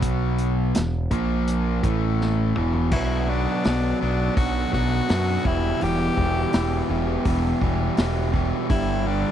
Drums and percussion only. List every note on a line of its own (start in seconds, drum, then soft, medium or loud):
0.02 kick loud
0.02 closed hi-hat medium
0.38 closed hi-hat medium
0.75 snare loud
0.75 closed hi-hat medium
1.11 kick loud
1.11 closed hi-hat medium
1.48 closed hi-hat medium
1.84 kick loud
1.84 closed hi-hat medium
2.21 snare medium
2.56 mid tom medium
2.73 floor tom medium
2.92 kick loud
2.92 crash loud
3.64 snare loud
3.64 open hi-hat medium
4.37 kick loud
4.37 open hi-hat medium
4.73 kick medium
5.09 snare loud
5.09 open hi-hat medium
5.45 kick loud
5.81 open hi-hat medium
6.17 kick medium
6.53 snare loud
6.53 open hi-hat medium
7.25 kick loud
7.25 open hi-hat medium
7.62 kick medium
7.97 snare loud
7.97 open hi-hat medium
8.34 kick medium
8.70 kick loud
8.70 open hi-hat medium